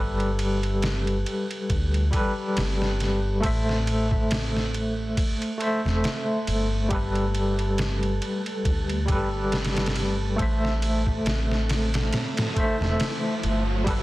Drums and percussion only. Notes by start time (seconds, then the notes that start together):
0.20 ride
0.39 ride
0.63 ride
0.82 snare, ride
1.07 ride
1.26 ride
1.51 ride
1.70 kick, ride
1.94 ride
2.13 kick, ride
2.57 snare, ride
2.82 snare
3.00 snare, ride
3.43 kick, ride
3.69 snare
3.87 ride
4.11 kick
4.31 snare, ride
4.56 snare
4.74 ride
5.17 kick, ride
5.42 ride
5.61 ride
5.86 snare
6.04 snare, ride
6.47 ride
6.91 kick, ride
7.15 ride
7.35 ride
7.59 ride
7.78 snare, ride
8.03 ride
8.22 ride
8.46 ride
8.65 kick, ride
8.89 ride
9.08 kick, ride
9.52 snare, ride
9.64 snare, ride
9.76 snare, ride
9.86 snare, ride
9.96 snare, ride
10.39 kick, ride
10.65 snare
10.82 ride
11.07 kick
11.26 snare, ride
11.51 snare
11.69 snare, ride
11.94 snare, ride
12.12 snare, ride
12.37 snare, ride
12.56 kick, ride
12.82 snare
13.00 snare, ride
13.43 ride
13.87 kick, ride